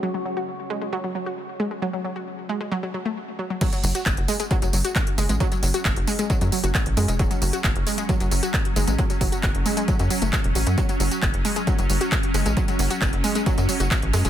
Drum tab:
CC |----------------|----------------|x---------------|----------------|
HH |----------------|----------------|xxoxxxoxxxoxxxox|xxoxxxoxxxoxxxox|
TB |----------------|----------------|xxxxx-xxxxxxx-xx|xxxxx-xxxxxxx-xx|
CP |----------------|----------------|----x-------x---|----x-------x---|
BD |----------------|----------------|o---o---o---o---|o---o---o---o---|

CC |----------------|----------------|----------------|----------------|
HH |xxoxxxoxxxoxxxox|xxoxxxoxxxoxxxox|xxoxxxoxxxoxxxox|xxoxxxoxxxoxxxox|
TB |xxxxx-xxxxxxx-xx|xxxxx-xxxxxxx-xx|xxxxx-xxxxxxx-xx|xxxxx-xxxxxxx-xx|
CP |----x-------x---|----x-------x---|----x-------x---|----x-------x---|
BD |o---o---o---o---|o-o-o---o---o---|o---o---o---o---|o---o---o---o---|